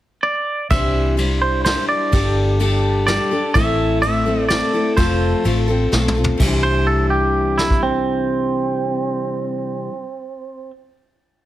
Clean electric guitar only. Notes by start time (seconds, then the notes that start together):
0.23 D5
0.71 E5
1.42 C5
1.65 C5
1.89 D5
3.07 D5
3.54 E5
4.02 E5
4.49 D5
4.97 C5
6.63 C5
6.87 A4
7.10 G4
7.58 E4
7.83 C4